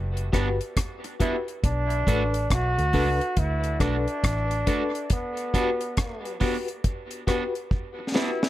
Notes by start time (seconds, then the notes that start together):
Already playing: F#1
0.17 closed hi-hat
0.33 G1 B3 D4 F#4 G4 B4, kick, cross-stick, closed hi-hat
0.61 closed hi-hat
0.77 kick, cross-stick, closed hi-hat
1.04 muted clean electric guitar stroke, closed hi-hat
1.20 B3 D4 E4 F#4 G4 B4, kick, closed hi-hat
1.48 closed hi-hat
1.64 B1 D4, kick, closed hi-hat
1.90 closed hi-hat
2.07 A1 A3 D4 F#4 A4 B4, kick, closed hi-hat
2.34 closed hi-hat
2.50 B1 F#4, kick, cross-stick, closed hi-hat
2.78 D2 A4 B4, closed hi-hat
2.93 C#2 A3 D4 F#4 A4 B4, kick, open hi-hat
3.21 closed hi-hat
3.37 D2 E4, kick, closed hi-hat
3.64 closed hi-hat
3.79 B1 A3 D4 F#4 A4 B4, kick, cross-stick, closed hi-hat
4.08 closed hi-hat
4.24 A1, kick, cross-stick, closed hi-hat
4.51 muted clean electric guitar stroke, closed hi-hat
4.67 A3 D4 F#4 A4 B4, kick, closed hi-hat
4.95 closed hi-hat
5.10 B3, kick, closed hi-hat
5.37 closed hi-hat
5.54 B3 D4 F#4 G4 B4, kick, closed hi-hat
5.81 closed hi-hat
5.97 kick, cross-stick, closed hi-hat
6.25 G4 B4, closed hi-hat
6.40 B3 D4 F#4 G4 B4, kick, open hi-hat
6.68 closed hi-hat
6.84 kick, closed hi-hat
7.11 closed hi-hat
7.27 B3 D4 F#4 G4 B4, kick, cross-stick, closed hi-hat
7.55 closed hi-hat
7.71 kick
7.99 muted clean electric guitar stroke
8.14 B3 D4 E4 F#4 G4 B4, snare
8.43 snare